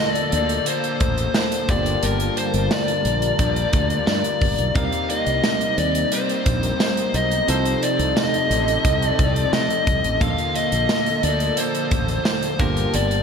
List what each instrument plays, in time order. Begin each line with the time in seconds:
Already playing: overdriven electric guitar A#2 F3 A#3, tine electric piano D3 A#3 F4 A4, analog synth pad D3 A#3 A4, lead electric guitar D#5
0.10 lead electric guitar D5
0.15 closed hi-hat
0.32 fretless electric bass D2, overdriven electric guitar F3 A#3, lead electric guitar D5, closed hi-hat
0.49 closed hi-hat
0.66 overdriven electric guitar F3 A#3, lead electric guitar C5, closed hi-hat
0.84 closed hi-hat
1.00 fretless electric bass A1, kick, closed hi-hat
1.18 closed hi-hat
1.34 lead electric guitar C5, snare, tambourine
1.52 closed hi-hat
1.68 fretless electric bass G1, overdriven electric guitar G2 D3 G3, analog synth pad G3 F4 A#4 A5, tine electric piano A3 D4 F4 G4, lead electric guitar D5, kick, closed hi-hat
1.74 tine electric piano A#3
1.86 closed hi-hat
2.03 fretless electric bass G1, lead electric guitar A#4, closed hi-hat
2.20 closed hi-hat
2.37 lead electric guitar C5, closed hi-hat
2.54 fretless electric bass G1, closed hi-hat
2.71 lead electric guitar D5, snare, tambourine
2.88 closed hi-hat
3.05 fretless electric bass A#1, closed hi-hat
3.22 closed hi-hat
3.39 fretless electric bass A#1, overdriven electric guitar G2 D3 G3, kick, closed hi-hat
3.56 closed hi-hat
3.73 fretless electric bass D2, overdriven electric guitar D3 G3, kick, closed hi-hat
3.90 closed hi-hat
4.07 fretless electric bass G2, lead electric guitar D5, snare, tambourine
4.24 closed hi-hat
4.41 fretless electric bass G1, kick, open hi-hat
4.58 fretless electric bass B1, closed hi-hat
4.75 fretless electric bass C2, overdriven electric guitar C3 G3 C4, analog synth pad G3 A#3 C4 D#4, tine electric piano C4 D#4 G4 A#4, lead electric guitar F5, kick, closed hi-hat
4.92 closed hi-hat
5.10 lead electric guitar D#5, closed hi-hat
5.26 fretless electric bass C2, closed hi-hat
5.44 snare, tambourine
5.61 closed hi-hat
5.78 fretless electric bass D#2, lead electric guitar D5, closed hi-hat
5.95 closed hi-hat
6.12 overdriven electric guitar G3 C4, lead electric guitar C5, closed hi-hat
6.29 closed hi-hat
6.46 fretless electric bass A#1, kick, closed hi-hat
6.63 closed hi-hat
6.80 lead electric guitar C5, snare, tambourine
6.97 closed hi-hat
7.14 fretless electric bass B1, lead electric guitar D#5, closed hi-hat
7.31 closed hi-hat
7.47 fretless electric bass C2, overdriven electric guitar F2 C3 F3, analog synth pad C3 C4 G4 A4, tine electric piano C4 D#4 F4 A4, lead electric guitar C5, closed hi-hat
7.65 closed hi-hat
7.83 lead electric guitar D5, closed hi-hat
7.99 fretless electric bass C2, closed hi-hat
8.17 lead electric guitar D#5, snare, tambourine
8.34 closed hi-hat
8.50 fretless electric bass A1, overdriven electric guitar C3 F3, closed hi-hat
8.68 closed hi-hat
8.84 fretless electric bass C2, overdriven electric guitar F2 C3 F3, kick, closed hi-hat
9.02 closed hi-hat
9.08 lead electric guitar D5
9.18 fretless electric bass C2, overdriven electric guitar C3 F3, kick, closed hi-hat
9.36 closed hi-hat
9.53 fretless electric bass C3, lead electric guitar D#5, snare, tambourine
9.70 closed hi-hat
9.87 fretless electric bass C2, kick, closed hi-hat
10.04 fretless electric bass A1, closed hi-hat
10.20 fretless electric bass A#1, overdriven electric guitar A#2 F3 A#3, analog synth pad D3 A#3 A4, tine electric piano A#3 C#4 F4 A4, lead electric guitar F5, kick, closed hi-hat
10.27 tine electric piano D3
10.38 closed hi-hat
10.55 lead electric guitar D#5, closed hi-hat
10.72 fretless electric bass A#1, closed hi-hat
10.89 snare, tambourine
11.06 closed hi-hat
11.23 fretless electric bass D2, overdriven electric guitar F3 A#3, lead electric guitar D5, closed hi-hat
11.40 closed hi-hat
11.57 overdriven electric guitar F3 A#3, lead electric guitar C5, closed hi-hat
11.75 closed hi-hat
11.91 fretless electric bass A1, kick, closed hi-hat
12.08 closed hi-hat
12.25 lead electric guitar C5, snare, tambourine
12.43 closed hi-hat
12.59 fretless electric bass G1, overdriven electric guitar G2 D3 G3, analog synth pad G3 F4 A#4 A5, tine electric piano A#3 D4 F4 G4, lead electric guitar A#4, kick, closed hi-hat
12.77 closed hi-hat
12.94 fretless electric bass G1, lead electric guitar D5, closed hi-hat
13.11 closed hi-hat